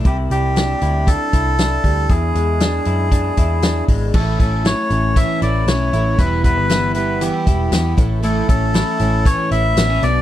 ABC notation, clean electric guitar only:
X:1
M:4/4
L:1/16
Q:1/4=117
K:Em
V:1 name="Clean electric guitar"
[C,E]2 G,2 D2 E2 D2 E2 D2 G,2 | [E,,E]2 ^G,2 D2 E2 D2 E2 D2 G,2 | [K:Amix] [A,,E]2 C2 E2 C2 E,2 E2 C2 E2 | [E,,E]2 B,2 E2 B,2 E,2 E2 B,2 A,,2 |
[A,,E]2 C2 E2 C2 E,2 E2 B, C B,,2 |]